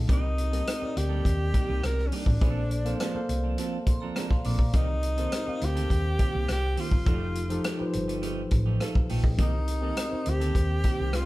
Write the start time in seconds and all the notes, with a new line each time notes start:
Already playing: F3 D#4 G4 A4 D#5 F5 G5 A5
0.08 C2 G3 A#3 C4 D#4 G4 A#4 D#5, kick, closed hi-hat
0.13 D#4
0.23 muted clean electric guitar stroke
0.37 muted clean electric guitar stroke, closed hi-hat
0.52 G3 A#3 C4 D#4 G4 A4 A#4 D#5, closed hi-hat
0.66 muted clean electric guitar stroke, cross-stick, closed hi-hat
0.81 C4 G4 A#4 D5, muted clean electric guitar stroke, muted fingered electric bass stroke
0.97 D2 G4, cross-stick, closed hi-hat
1.09 G3 A#3 D#4 A4
1.24 D#2, muted clean electric guitar stroke, kick, closed hi-hat
1.38 muted clean electric guitar stroke
1.53 G3 A#3 D#4 G4, kick, closed hi-hat
1.68 C2 G3 A#3 D#4 G4
1.83 C2 A#4, muted clean electric guitar stroke, cross-stick, closed hi-hat
1.97 muted clean electric guitar stroke, cross-stick
2.07 C#4
2.12 G3 A#3 D4 D#4 G4, open hi-hat
2.26 A1, muted clean electric guitar stroke, kick
2.41 A#1 F3 A#3 C4 D4 A4 C5 D5, kick, closed hi-hat
2.71 muted clean electric guitar stroke, closed hi-hat
2.85 F3 A#3 C4 D4 A4 C5 F5, closed hi-hat
3.00 F3 C4 D4 A4, cross-stick, closed hi-hat
3.14 A#3 A4 C5 F5, muted fingered electric bass stroke
3.29 C2, muted clean electric guitar stroke, closed hi-hat
3.43 F3 C4 D4 A4
3.58 F3 C4 D4 A4 F5, closed hi-hat
3.72 A5
3.87 C6, muted clean electric guitar stroke, kick, closed hi-hat
4.00 F3 C4 D4 A4 A#5
4.15 F3 C4 D4 A#4 D5 A5 A#5, cross-stick, closed hi-hat
4.30 F5 C6, muted clean electric guitar stroke, kick, cross-stick
4.44 A#1 F3 C4 D4 A#4 F5 D6, open hi-hat
4.59 D5 A#5, muted clean electric guitar stroke, kick
4.73 C2 D#3 A#3 C4 D#4 G4 A#4, kick, closed hi-hat
4.88 muted clean electric guitar stroke
5.03 muted clean electric guitar stroke, closed hi-hat
5.17 D#3 A#3 C4 G4 A4 A#4 C5, closed hi-hat
5.32 cross-stick, closed hi-hat
5.46 C4 G4 A#4 F5, muted clean electric guitar stroke, muted fingered electric bass stroke
5.61 D2 G4, cross-stick, closed hi-hat
5.75 D#3 A#3 C4 A4, closed hi-hat
5.90 D#2, kick, closed hi-hat
6.05 muted clean electric guitar stroke
6.19 D#3 A#3 C4 G4, kick, closed hi-hat
6.33 C2 D#3 A#3 C4 G4
6.48 C2, muted clean electric guitar stroke, cross-stick, closed hi-hat
6.52 G4
6.62 muted clean electric guitar stroke
6.76 D#3 A#3 C4 G4, open hi-hat
6.81 F4
6.91 G1, muted clean electric guitar stroke, kick
7.05 F1 F3 A3 D#4 G4 A4, kick, closed hi-hat
7.35 muted clean electric guitar stroke, closed hi-hat
7.49 F3 A3 D#4 G4 A4, closed hi-hat
7.64 F3 A3 D#4 G4, cross-stick, closed hi-hat
7.78 F3 D#4 G4 B4, muted fingered electric bass stroke
7.87 C5
7.93 G1, muted clean electric guitar stroke, closed hi-hat
8.08 F3 A3 D#4 G4, closed hi-hat
8.22 F3 A3 D#4 G4, closed hi-hat
8.51 A1, muted clean electric guitar stroke, kick, closed hi-hat
8.66 F3 A3 D#4 G4
8.80 F3 A3 D#4 A4 F5, cross-stick, closed hi-hat
8.95 muted clean electric guitar stroke, kick
9.09 A#1 F3 A3 D#4 A4 G5, open hi-hat
9.24 G4 D#5, muted clean electric guitar stroke, kick
9.37 C2 D#3 A#3 C4 G4 A#4 D#5, kick, closed hi-hat
9.42 D#4
9.54 muted clean electric guitar stroke
9.68 muted clean electric guitar stroke, closed hi-hat
9.81 D#3 A#3 C4 G4 A4 A#4 D#5
9.97 muted clean electric guitar stroke, cross-stick, closed hi-hat
10.10 C4 G4 A#4 C5, muted clean electric guitar stroke, muted fingered electric bass stroke
10.26 D2, closed hi-hat
10.30 G4
10.40 D#3 A#3 C4 A4, closed hi-hat
10.55 D#2, muted clean electric guitar stroke, kick, closed hi-hat
10.70 muted clean electric guitar stroke
10.84 D#3 A#3 C4 G4, kick, closed hi-hat
10.99 C2 D#3 A#3 C4 G4
11.13 F4, muted clean electric guitar stroke, cross-stick, closed hi-hat